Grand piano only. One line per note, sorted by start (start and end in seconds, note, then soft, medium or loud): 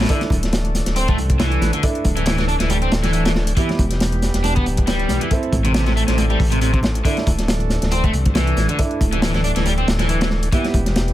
0.09 0.30 D4 medium
0.09 0.30 E4 medium
0.09 0.30 A4 medium
0.09 0.30 E5 medium
1.83 2.04 D4 medium
1.83 2.04 E4 medium
1.83 2.04 A4 medium
1.83 2.04 E5 medium
3.57 3.78 B3 medium
3.57 3.78 E4 medium
3.57 3.78 G4 medium
3.57 3.78 E5 medium
5.31 5.52 C4 medium
5.31 5.52 E4 medium
5.31 5.52 A4 medium
5.31 5.52 E5 medium
7.05 7.26 D4 medium
7.05 7.26 E4 medium
7.05 7.26 A4 medium
7.05 7.26 E5 medium
8.79 9.00 D4 medium
8.79 9.00 E4 medium
8.79 9.00 A4 medium
8.79 9.00 E5 medium
10.53 10.74 B3 medium
10.53 10.74 E4 medium
10.53 10.74 G4 medium
10.53 10.74 E5 medium